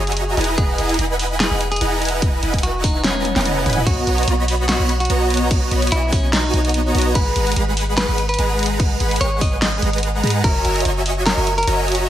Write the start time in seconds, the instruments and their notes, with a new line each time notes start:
Already playing: 808-style bass F#1, supersaw synth F#4 C#5 D#5 E5 G#5 A#5, clean electric guitar G#4
0.07 closed hi-hat
0.12 closed hi-hat
0.17 closed hi-hat
0.37 808-style bass E1, supersaw synth E4 B4 D#5 F#5 G#5 A#5, closed hi-hat
0.41 closed hi-hat
0.44 closed hi-hat
0.58 808-style bass E1, supersaw synth E4 B4 D#5 F#5 G#5 A#5, clean electric guitar G#4, kick, closed hi-hat
0.78 808-style bass E1, supersaw synth E4 B4 D#5 F#5 G#5 A#5, closed hi-hat
0.89 closed hi-hat
0.94 closed hi-hat
0.99 808-style bass E1, supersaw synth E4 B4 D#5 F#5 G#5 B5, closed hi-hat
1.19 open hi-hat
1.40 clean electric guitar G#4, snare, closed hi-hat
1.51 808-style bass E1, supersaw synth E4 B4 D#5 F#5 G#5 B5
1.61 closed hi-hat
1.72 clean electric guitar G#4, closed hi-hat
1.76 closed hi-hat
1.81 808-style bass E1, supersaw synth E4 B4 D#5 F#5 G#5 A#5, closed hi-hat
2.02 closed hi-hat
2.05 closed hi-hat
2.08 closed hi-hat
2.22 kick, closed hi-hat
2.43 808-style bass E1, supersaw synth E4 B4 D#5 F#5 G#5 B5, closed hi-hat
2.54 kick, closed hi-hat
2.58 closed hi-hat
2.63 808-style bass E1, supersaw synth E4 B4 D#5 F#5 G#5 A#5, clean electric guitar F#4, closed hi-hat
2.84 clean electric guitar D#4, kick, open hi-hat
3.04 clean electric guitar C#4, snare, closed hi-hat, high tom, swell
3.15 high tom
3.25 closed hi-hat, high tom
3.36 808-style bass E1, supersaw synth E4 B4 D#5 F#5 G#5 A#5, snare, closed hi-hat
3.41 closed hi-hat
3.45 closed hi-hat, mid tom
3.66 808-style bass E1, supersaw synth E4 B4 D#5 F#5 G#5 B5, closed hi-hat, mid tom
3.70 closed hi-hat
3.73 closed hi-hat
3.77 mid tom
3.86 808-style bass B1, supersaw synth B3 F#4 C#5 D#5 A#5, clean electric guitar F#4, kick, closed hi-hat, crash
4.07 808-style bass B1, supersaw synth B3 F#4 C#5 D#5 A#5, closed hi-hat
4.18 closed hi-hat
4.23 closed hi-hat
4.28 808-style bass B1, supersaw synth B3 F#4 C#5 D#5 B5, closed hi-hat
4.48 open hi-hat
4.69 clean electric guitar F#4, snare, closed hi-hat, crash
4.80 808-style bass B1, supersaw synth B3 F#4 C#5 D#5 B5
4.89 closed hi-hat
5.00 clean electric guitar F#4, closed hi-hat
5.05 closed hi-hat
5.10 808-style bass B1, supersaw synth B3 F#4 C#5 D#5 A#5, closed hi-hat
5.30 closed hi-hat
5.34 closed hi-hat
5.37 closed hi-hat
5.51 kick, closed hi-hat, crash
5.71 808-style bass B1, supersaw synth B3 F#4 C#5 D#5 B5, closed hi-hat
5.82 closed hi-hat
5.87 closed hi-hat
5.92 808-style bass B1, supersaw synth B3 F#4 C#5 D#5 G#5, clean electric guitar E4, closed hi-hat
6.12 clean electric guitar C#4, kick, open hi-hat
6.33 clean electric guitar D#4, snare, closed hi-hat, crash
6.54 808-style bass B1, supersaw synth B3 F#4 C#5 D#5 A#5, closed hi-hat
6.65 closed hi-hat
6.69 closed hi-hat
6.74 closed hi-hat
6.95 808-style bass B1, supersaw synth B3 F#4 C#5 D#5 A#5, closed hi-hat
6.98 closed hi-hat
7.02 closed hi-hat
7.15 808-style bass G#1, supersaw synth G#3 G#4 B4 F#5 A#5, clean electric guitar B4, kick, closed hi-hat, crash
7.36 808-style bass G#1, supersaw synth G#3 G#4 B4 F#5 A#5, closed hi-hat
7.47 closed hi-hat
7.52 closed hi-hat
7.56 808-style bass G#1, supersaw synth G#3 G#4 B4 F#5 B5, closed hi-hat
7.77 open hi-hat
7.97 clean electric guitar B4, snare, closed hi-hat, crash
8.09 808-style bass G#1, supersaw synth G#3 G#4 B4 F#5 B5
8.18 closed hi-hat
8.29 clean electric guitar B4, closed hi-hat
8.34 closed hi-hat
8.39 808-style bass G#1, supersaw synth G#3 G#4 B4 F#5 A#5, closed hi-hat
8.59 closed hi-hat
8.63 closed hi-hat
8.66 closed hi-hat
8.80 kick, closed hi-hat, crash
9.00 808-style bass G#1, supersaw synth G#3 G#4 B4 F#5 B5, closed hi-hat
9.11 closed hi-hat
9.16 closed hi-hat
9.21 808-style bass G#1, supersaw synth G#3 G#4 B4 F#5 G#5, clean electric guitar C#5, closed hi-hat
9.41 clean electric guitar D#5, kick, open hi-hat
9.62 clean electric guitar D#5, snare, closed hi-hat, crash
9.82 808-style bass G#1, supersaw synth G#3 G#4 B4 F#5 A#5, closed hi-hat
9.93 closed hi-hat
9.98 closed hi-hat
10.03 closed hi-hat
10.23 808-style bass G#2, supersaw synth G#3 G#4 B4 F#5 A#5, closed hi-hat
10.27 closed hi-hat
10.30 closed hi-hat
10.44 808-style bass F#1, supersaw synth F#4 C#5 D#5 E5 G#5 A#5, clean electric guitar A#4, kick, closed hi-hat, crash
10.65 808-style bass F#1, supersaw synth F#4 C#5 D#5 E5 G#5 A#5, closed hi-hat
10.76 closed hi-hat
10.80 closed hi-hat
10.85 808-style bass F#1, supersaw synth F#4 C#5 D#5 E5 G#5 C#6, closed hi-hat
11.06 open hi-hat
11.26 clean electric guitar A#4, snare, closed hi-hat, crash
11.37 808-style bass F#1, supersaw synth F#4 C#5 D#5 E5 G#5 C#6
11.47 closed hi-hat
11.58 clean electric guitar A#4, closed hi-hat
11.63 closed hi-hat
11.67 808-style bass F#1, supersaw synth F#4 C#5 D#5 E5 G#5 A#5, closed hi-hat
11.88 closed hi-hat
11.92 closed hi-hat
11.95 closed hi-hat